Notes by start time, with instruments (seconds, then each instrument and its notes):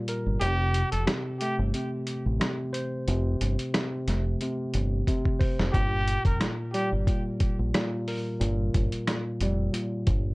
Already playing: tine electric piano A#2 G3
0.08 tine electric piano A#4, closed hi-hat
0.26 fingered electric bass G1
0.40 fingered electric bass F1, tine electric piano C3, muted trumpet G4, closed hi-hat
0.74 closed hi-hat
0.92 fingered electric bass F1, muted trumpet A4, closed hi-hat
1.07 tine electric piano C3, cross-stick, snare, closed hi-hat
1.40 tine electric piano A3, muted trumpet G4, closed hi-hat
1.59 fingered electric bass G1
1.74 tine electric piano C3, closed hi-hat
2.07 closed hi-hat
2.26 fingered electric bass A1
2.40 tine electric piano C3, cross-stick, snare, closed hi-hat
2.73 tine electric piano C5, closed hi-hat
3.08 fingered electric bass F1, tine electric piano C3, closed hi-hat
3.41 fingered electric bass G1, closed hi-hat
3.59 closed hi-hat
3.74 tine electric piano C3, cross-stick, snare, closed hi-hat
4.08 fingered electric bass F1, tine electric piano A3, snare, closed hi-hat
4.41 tine electric piano C3, closed hi-hat
4.74 fingered electric bass G1, closed hi-hat
5.07 tine electric piano C3, kick, closed hi-hat
5.25 kick
5.39 tine electric piano C5, kick, open hi-hat
5.59 fingered electric bass F1, snare
5.73 fingered electric bass G1, tine electric piano A#2, muted trumpet G4, kick, closed hi-hat
6.08 closed hi-hat
6.25 fingered electric bass F1, muted trumpet A#4, kick, closed hi-hat
6.41 tine electric piano A#2, cross-stick, snare, closed hi-hat
6.74 tine electric piano G3, muted trumpet G4, closed hi-hat
6.92 fingered electric bass G1
7.07 tine electric piano A#2, kick, closed hi-hat
7.40 kick, closed hi-hat
7.59 fingered electric bass A#1
7.74 tine electric piano A#2, cross-stick, snare, closed hi-hat
8.08 tine electric piano A#4, open hi-hat
8.40 fingered electric bass G1, tine electric piano A#2, closed hi-hat
8.74 fingered electric bass G1, kick, closed hi-hat
8.92 closed hi-hat
9.07 tine electric piano A#2, cross-stick, snare, closed hi-hat
9.41 fingered electric bass F1, tine electric piano G3, closed hi-hat
9.73 tine electric piano A#2, closed hi-hat
10.07 fingered electric bass G1, kick, closed hi-hat